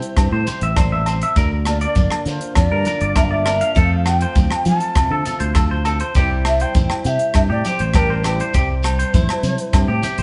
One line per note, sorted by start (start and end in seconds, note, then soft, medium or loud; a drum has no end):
0.00 0.16 C3 medium
0.00 1.37 G3 medium
0.00 1.33 E4 medium
0.00 0.46 G4 medium
0.00 1.02 C5 medium
0.00 closed hi-hat soft
0.17 0.30 G2 medium
0.17 0.76 C3 medium
0.17 kick medium
0.17 cross-stick medium
0.17 closed hi-hat soft
0.17 low agogo medium
0.17 shekere medium
0.32 0.44 A2 medium
0.32 0.46 C5 medium
0.47 1.33 G4 medium
0.47 0.61 C5 medium
0.47 closed hi-hat soft
0.47 muted conga soft
0.47 low conga medium
0.47 shekere medium
0.61 1.22 A1 medium
0.61 0.76 E5 medium
0.61 closed hi-hat soft
0.77 1.07 A#2 medium
0.77 0.91 C5 medium
0.77 kick medium
0.77 cross-stick medium
0.77 closed hi-hat medium
0.77 high conga medium
0.77 low agogo medium
0.77 shekere medium
0.92 1.05 E5 medium
1.06 1.37 C3 medium
1.06 1.21 C5 medium
1.06 closed hi-hat soft
1.06 low agogo medium
1.06 shekere medium
1.22 1.36 E5 medium
1.22 closed hi-hat soft
1.36 1.85 D2 loud
1.36 2.55 D3 medium
1.36 1.50 A#4 medium
1.36 kick medium
1.36 closed hi-hat soft
1.36 muted conga soft
1.36 shekere loud
1.65 3.15 A#3 medium
1.65 1.81 D5 medium
1.65 cross-stick medium
1.65 closed hi-hat soft
1.65 low agogo medium
1.65 shekere medium
1.81 1.95 D5 medium
1.81 2.30 D5 medium
1.81 closed hi-hat soft
1.95 2.08 G1 medium
1.95 3.45 D4 medium
1.95 kick medium
1.95 closed hi-hat soft
1.95 high conga medium
1.95 shekere medium
2.11 cross-stick medium
2.11 low agogo medium
2.26 2.38 D3 medium
2.26 2.86 F4 medium
2.26 2.55 C5 medium
2.26 closed hi-hat soft
2.26 muted conga soft
2.26 shekere medium
2.41 closed hi-hat medium
2.55 2.68 F2 medium
2.55 3.74 D3 medium
2.55 3.12 D5 loud
2.55 kick medium
2.55 cross-stick medium
2.55 closed hi-hat medium
2.55 low agogo medium
2.55 shekere medium
2.71 2.83 G2 medium
2.71 2.85 A#4 medium
2.85 3.73 F4 medium
2.85 3.00 A#4 medium
2.85 closed hi-hat medium
2.85 muted conga soft
2.85 high conga medium
2.85 shekere medium
3.01 3.61 G1 medium
3.01 3.15 D5 medium
3.01 closed hi-hat soft
3.16 3.72 A#3 medium
3.16 3.30 A#4 medium
3.16 3.25 E5 medium
3.16 kick loud
3.16 cross-stick medium
3.16 closed hi-hat medium
3.16 high conga medium
3.16 low agogo medium
3.16 shekere medium
3.24 3.33 F5 medium
3.31 3.44 D5 medium
3.31 3.79 E5 medium
3.45 3.72 D4 medium
3.45 3.59 A#4 medium
3.45 cross-stick medium
3.45 closed hi-hat medium
3.45 low agogo medium
3.45 shekere medium
3.61 3.74 F5 medium
3.61 closed hi-hat medium
3.75 4.24 F2 medium
3.75 6.11 F3 medium
3.75 4.05 A3 medium
3.75 4.37 C4 medium
3.75 4.66 F4 medium
3.75 3.90 A4 medium
3.75 6.16 A4 medium
3.75 4.08 F5 loud
3.75 kick loud
3.75 closed hi-hat medium
3.75 shekere medium
4.06 5.56 A3 medium
4.06 4.66 G5 loud
4.06 cross-stick medium
4.06 closed hi-hat medium
4.06 low agogo medium
4.06 shekere medium
4.21 4.35 C5 medium
4.21 closed hi-hat medium
4.35 4.48 D2 medium
4.35 5.86 C4 medium
4.35 kick medium
4.35 closed hi-hat soft
4.35 high conga medium
4.35 shekere medium
4.50 cross-stick medium
4.50 low agogo medium
4.65 4.78 F3 medium
4.65 5.25 F4 medium
4.65 5.23 A5 loud
4.65 closed hi-hat medium
4.65 muted conga soft
4.65 high conga medium
4.65 shekere medium
4.80 closed hi-hat soft
4.95 5.08 C2 medium
4.95 6.12 C3 medium
4.95 kick medium
4.95 cross-stick medium
4.95 closed hi-hat medium
4.95 muted conga soft
4.95 low agogo medium
4.95 shekere medium
5.10 5.23 D3 medium
5.10 5.24 A4 medium
5.25 6.12 F4 medium
5.25 5.39 A4 medium
5.25 closed hi-hat medium
5.25 muted conga soft
5.25 low conga medium
5.25 shekere medium
5.40 6.01 D2 medium
5.40 5.54 C5 medium
5.40 closed hi-hat medium
5.55 5.68 A4 medium
5.55 kick medium
5.55 cross-stick medium
5.55 closed hi-hat medium
5.55 high conga medium
5.55 low agogo medium
5.55 shekere medium
5.71 5.84 C5 medium
5.85 6.17 C4 soft
5.85 5.99 A4 medium
5.85 closed hi-hat soft
5.85 low agogo medium
5.85 shekere medium
6.00 6.14 C5 medium
6.00 closed hi-hat medium
6.15 6.63 C2 medium
6.15 7.35 C3 medium
6.15 6.46 G3 medium
6.15 6.76 E4 medium
6.15 6.29 G4 medium
6.15 7.06 G4 medium
6.15 kick medium
6.15 closed hi-hat medium
6.15 muted conga soft
6.15 shekere loud
6.19 8.52 C5 medium
6.45 7.93 G3 medium
6.45 6.63 E5 loud
6.45 cross-stick medium
6.45 closed hi-hat soft
6.45 low agogo medium
6.45 shekere medium
6.60 6.74 C5 medium
6.60 7.08 G5 loud
6.60 closed hi-hat medium
6.75 6.87 A1 medium
6.75 8.24 E4 medium
6.75 kick medium
6.75 closed hi-hat soft
6.75 high conga medium
6.75 shekere medium
6.90 cross-stick medium
6.90 low agogo medium
7.04 7.17 C3 medium
7.04 7.65 G4 medium
7.04 7.35 E5 loud
7.04 closed hi-hat soft
7.04 shekere medium
7.19 closed hi-hat soft
7.34 7.47 G2 medium
7.34 8.51 C3 medium
7.34 7.42 E5 loud
7.34 kick medium
7.34 cross-stick medium
7.34 closed hi-hat medium
7.34 low agogo medium
7.34 shekere medium
7.50 7.62 A2 medium
7.50 7.63 G4 medium
7.50 7.64 D5 medium
7.65 7.78 G4 medium
7.65 8.51 G4 medium
7.65 7.98 C5 medium
7.65 closed hi-hat medium
7.65 muted conga soft
7.65 high conga medium
7.65 shekere medium
7.79 8.40 A1 medium
7.79 7.93 C5 medium
7.79 closed hi-hat soft
7.94 8.83 G3 medium
7.94 8.08 G4 medium
7.94 8.25 A#4 medium
7.94 kick medium
7.94 cross-stick medium
7.94 closed hi-hat soft
7.94 high conga medium
7.94 low agogo medium
7.94 shekere loud
8.10 8.23 C5 medium
8.24 8.51 E4 medium
8.24 8.38 G4 medium
8.24 10.23 C5 medium
8.24 cross-stick medium
8.24 closed hi-hat medium
8.24 low agogo medium
8.24 shekere medium
8.40 8.53 C5 medium
8.40 closed hi-hat medium
8.54 9.02 C2 medium
8.54 9.73 C3 medium
8.54 8.68 G4 medium
8.54 kick loud
8.54 closed hi-hat medium
8.54 muted conga soft
8.54 shekere loud
8.83 10.23 G3 medium
8.83 cross-stick medium
8.83 closed hi-hat medium
8.83 low agogo medium
8.83 shekere medium
8.99 9.12 C5 medium
8.99 closed hi-hat medium
9.14 9.26 A1 medium
9.14 10.02 E4 medium
9.14 kick medium
9.14 closed hi-hat medium
9.14 high conga medium
9.14 shekere loud
9.29 cross-stick medium
9.29 low agogo medium
9.43 9.55 C3 medium
9.43 closed hi-hat medium
9.43 muted conga soft
9.43 high conga medium
9.43 shekere medium
9.58 closed hi-hat medium
9.73 9.86 G2 medium
9.73 10.23 C3 medium
9.73 kick loud
9.73 cross-stick medium
9.73 closed hi-hat medium
9.73 low agogo medium
9.73 shekere loud
9.88 10.00 A2 medium
9.88 10.02 G4 medium
10.03 10.17 G4 medium
10.03 muted steel-string acoustic guitar stroke medium
10.03 closed hi-hat medium
10.03 muted conga soft
10.03 low conga medium
10.03 shekere medium
10.18 10.23 A1 medium
10.18 10.23 G4 soft
10.18 10.23 C5 medium
10.18 closed hi-hat soft